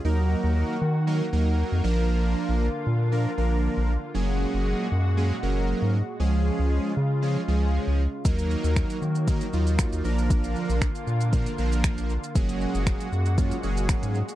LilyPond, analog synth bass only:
\new Staff \with { instrumentName = "Analog synth bass" } { \clef bass \time 4/4 \key ees \minor \tempo 4 = 117 ees,8. ees,8 r16 ees4 ees,8. f,16 bes,,8~ | bes,,8. bes,,8 r16 bes,4 bes,,8. bes,,8 r16 | ges,,8. ges,,8 r16 ges,4 ges,,8. aes,8 r16 | des,8. des,8 r16 des4 des,8. des,8 r16 |
ees,8. ees,8 r16 ees4 ees,8. ees,16 bes,,8~ | bes,,8. bes,,8 r16 bes,4 bes,,8. bes,,8 r16 | ges,,8. ges,,8 r16 ges,4 ges,,8. aes,8 r16 | }